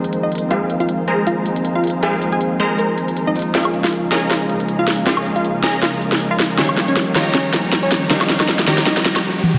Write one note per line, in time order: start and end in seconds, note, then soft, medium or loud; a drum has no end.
0.00 3.32 D#3 medium
0.00 0.49 F3 medium
0.00 0.49 G#3 medium
0.00 3.32 G#3 medium
0.00 0.50 A#3 medium
0.00 0.52 C4 medium
0.00 3.32 C4 medium
0.00 0.53 D#4 loud
0.00 6.54 F4 medium
0.00 0.49 G#4 medium
0.00 0.49 A#4 medium
0.00 0.49 C5 medium
0.00 0.49 A#5 loud
0.04 closed hi-hat medium
0.13 closed hi-hat medium
0.23 0.45 D#4 medium
0.23 0.45 D#5 medium
0.32 closed hi-hat soft
0.35 closed hi-hat medium
0.38 closed hi-hat medium
0.49 1.43 F3 medium
0.49 1.06 G#3 medium
0.49 1.43 A#3 medium
0.49 1.44 C4 medium
0.49 1.45 D#4 loud
0.49 0.73 F4 medium
0.49 1.06 G#4 medium
0.49 1.06 A#4 medium
0.49 1.06 C5 medium
0.49 0.73 F5 loud
0.49 1.06 F5 medium
0.49 closed hi-hat medium
0.70 closed hi-hat medium
0.80 1.02 F4 medium
0.80 1.02 F5 medium
0.80 closed hi-hat medium
0.89 closed hi-hat medium
1.08 2.01 G#3 medium
1.08 2.01 G#4 medium
1.08 1.23 G#4 medium
1.08 2.01 A#4 medium
1.08 2.01 C5 medium
1.08 1.23 G#5 medium
1.08 2.01 A#5 loud
1.08 closed hi-hat medium
1.27 1.42 F4 medium
1.27 1.42 F5 medium
1.27 closed hi-hat medium
1.44 2.00 F3 medium
1.44 2.00 A#3 medium
1.44 2.01 C4 medium
1.44 closed hi-hat medium
1.48 2.02 D#4 medium
1.56 closed hi-hat medium
1.65 closed hi-hat medium
1.75 1.97 F4 medium
1.75 1.97 F5 medium
1.84 closed hi-hat soft
1.87 closed hi-hat medium
1.90 closed hi-hat medium
2.01 2.95 F3 medium
2.01 2.58 G#3 medium
2.01 2.95 A#3 medium
2.01 2.96 C4 medium
2.01 2.58 G#4 medium
2.01 2.25 G#4 medium
2.01 2.58 A#4 medium
2.01 2.58 C5 medium
2.01 2.58 F5 medium
2.01 2.25 G#5 loud
2.01 closed hi-hat medium
2.05 2.97 D#4 loud
2.22 closed hi-hat medium
2.32 2.54 G#4 medium
2.32 2.54 G#5 medium
2.32 closed hi-hat medium
2.41 closed hi-hat medium
2.60 3.35 G#3 medium
2.60 3.35 G#4 medium
2.60 3.35 A#4 medium
2.60 3.35 C5 medium
2.60 2.75 C5 medium
2.60 3.35 A#5 loud
2.60 2.75 C6 medium
2.60 closed hi-hat medium
2.79 2.94 A#4 medium
2.79 2.94 A#5 medium
2.79 closed hi-hat medium
2.98 closed hi-hat medium
3.08 closed hi-hat medium
3.17 closed hi-hat medium
3.26 3.33 F3 medium
3.26 3.33 A#3 medium
3.26 3.34 C4 medium
3.26 3.49 D#4 medium
3.26 3.34 D#4 medium
3.26 3.49 D#5 medium
3.35 9.20 C#3 medium
3.35 3.51 F3 medium
3.35 3.52 G#3 medium
3.35 6.55 G#3 medium
3.35 9.20 A#3 medium
3.35 3.53 A#3 medium
3.35 3.53 D#4 medium
3.35 closed hi-hat soft
3.39 closed hi-hat medium
3.42 closed hi-hat medium
3.53 4.46 F3 medium
3.53 4.47 G#3 medium
3.53 4.48 A#3 medium
3.53 4.10 C#4 medium
3.53 3.77 F4 medium
3.53 4.10 G#4 medium
3.53 4.10 A#4 medium
3.53 4.10 D#5 medium
3.53 3.77 F5 loud
3.53 4.10 F5 medium
3.53 snare soft
3.53 closed hi-hat medium
3.53 riser medium
3.57 4.49 D#4 loud
3.65 high woodblock medium
3.74 closed hi-hat medium
3.84 4.06 F4 medium
3.84 4.05 F5 medium
3.84 snare soft
3.84 closed hi-hat medium
3.93 closed hi-hat medium
4.11 5.04 C#4 medium
4.11 5.04 G#4 medium
4.11 4.27 G#4 medium
4.11 5.04 A#4 medium
4.11 5.05 D#5 medium
4.11 4.27 G#5 medium
4.11 5.04 A#5 loud
4.11 snare medium
4.11 closed hi-hat medium
4.31 4.46 F4 medium
4.31 4.45 F5 medium
4.31 snare medium
4.31 closed hi-hat medium
4.47 5.03 F3 medium
4.47 5.04 G#3 medium
4.47 5.05 A#3 medium
4.47 closed hi-hat medium
4.51 5.05 D#4 medium
4.60 closed hi-hat medium
4.69 closed hi-hat medium
4.79 5.00 F4 medium
4.79 5.00 F5 medium
4.88 snare medium
4.88 closed hi-hat soft
4.91 closed hi-hat medium
4.94 closed hi-hat medium
5.05 5.98 F3 medium
5.05 5.99 G#3 medium
5.05 6.00 A#3 medium
5.05 5.62 C#4 medium
5.05 6.00 D#4 loud
5.05 5.28 F4 medium
5.05 5.61 G#4 medium
5.05 5.61 A#4 medium
5.05 5.61 D#5 medium
5.05 5.28 F5 loud
5.05 5.62 F5 medium
5.05 snare medium
5.05 closed hi-hat medium
5.17 high woodblock medium
5.26 closed hi-hat medium
5.36 5.57 F4 medium
5.36 5.57 F5 medium
5.36 closed hi-hat medium
5.45 closed hi-hat medium
5.63 6.56 C#4 medium
5.63 6.56 G#4 medium
5.63 5.78 G#4 medium
5.63 6.56 A#4 medium
5.63 6.56 D#5 medium
5.63 5.78 G#5 medium
5.63 6.56 A#5 loud
5.63 snare medium
5.63 closed hi-hat medium
5.82 5.97 F4 medium
5.82 5.97 F5 medium
5.82 snare medium
5.82 closed hi-hat medium
5.99 6.55 F3 medium
5.99 6.56 G#3 medium
5.99 6.57 A#3 medium
5.99 closed hi-hat medium
6.03 6.57 D#4 medium
6.12 snare medium
6.12 closed hi-hat medium
6.20 closed hi-hat medium
6.31 6.52 F4 medium
6.31 6.52 F5 medium
6.39 snare medium
6.39 closed hi-hat soft
6.43 closed hi-hat medium
6.46 closed hi-hat medium
6.56 7.13 D#3 medium
6.56 7.50 F3 medium
6.56 7.51 G3 medium
6.56 9.22 G3 medium
6.56 7.52 A#3 medium
6.56 6.80 C#4 medium
6.56 7.52 C#4 loud
6.56 7.13 D#4 medium
6.56 9.22 D#4 medium
6.56 7.13 G4 medium
6.56 6.80 C#5 loud
6.56 7.13 C#5 medium
6.56 7.13 F5 medium
6.56 snare medium
6.56 closed hi-hat medium
6.69 high woodblock medium
6.77 snare medium
6.77 closed hi-hat medium
6.88 7.09 C#4 medium
6.88 7.09 C#5 medium
6.88 closed hi-hat medium
6.96 snare medium
6.96 closed hi-hat medium
7.15 8.08 D#3 loud
7.15 8.08 D#4 medium
7.15 7.30 F4 medium
7.15 8.08 G4 medium
7.15 8.08 C#5 medium
7.15 7.30 F5 medium
7.15 8.08 A#5 loud
7.15 snare medium
7.15 closed hi-hat medium
7.34 7.49 C#4 medium
7.34 7.49 C#5 medium
7.34 snare medium
7.34 closed hi-hat medium
7.51 8.07 F3 medium
7.51 8.08 G3 medium
7.51 8.09 A#3 medium
7.51 snare medium
7.51 closed hi-hat medium
7.55 8.09 C#4 medium
7.64 closed hi-hat medium
7.72 snare medium
7.72 closed hi-hat medium
7.83 8.04 C#4 medium
7.83 8.04 C#5 medium
7.92 snare medium
7.92 closed hi-hat medium
7.95 closed hi-hat medium
7.98 closed hi-hat medium
8.08 8.65 D#3 medium
8.08 9.02 F3 medium
8.08 9.03 G3 medium
8.08 9.04 A#3 medium
8.08 8.32 D#4 medium
8.08 8.65 D#4 medium
8.08 8.65 G4 medium
8.08 8.65 C#5 medium
8.08 8.32 D#5 loud
8.08 8.65 F5 medium
8.08 snare medium
8.08 closed hi-hat medium
8.12 9.04 C#4 loud
8.21 snare medium
8.21 high woodblock medium
8.29 snare medium
8.29 closed hi-hat medium
8.40 8.61 D#4 medium
8.40 8.61 D#5 medium
8.40 snare medium
8.40 closed hi-hat medium
8.40 high woodblock medium
8.48 snare loud
8.48 closed hi-hat medium
8.59 snare medium
8.67 9.24 D#3 medium
8.67 9.24 D#4 medium
8.67 8.82 G4 medium
8.67 9.24 G4 medium
8.67 9.24 C#5 medium
8.67 8.82 G5 medium
8.67 9.24 A#5 loud
8.67 snare loud
8.67 closed hi-hat medium
8.78 snare medium
8.86 9.01 D#4 medium
8.86 9.01 D#5 medium
8.86 snare loud
8.86 closed hi-hat medium
8.97 snare medium
9.05 snare loud
9.05 closed hi-hat medium
9.16 snare medium
9.16 closed hi-hat medium
9.16 high woodblock medium
9.43 high tom medium
9.54 mid tom medium